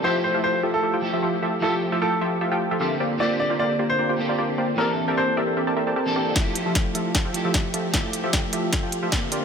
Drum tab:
HH |--------|--------|--------|--------|
SD |--------|--------|--------|--------|
BD |--------|--------|--------|--------|

HH |xxxxxxxx|xxxxxxxx|
SD |o-o-o-o-|o-o-o-o-|
BD |o-o-o-o-|o-o-o-o-|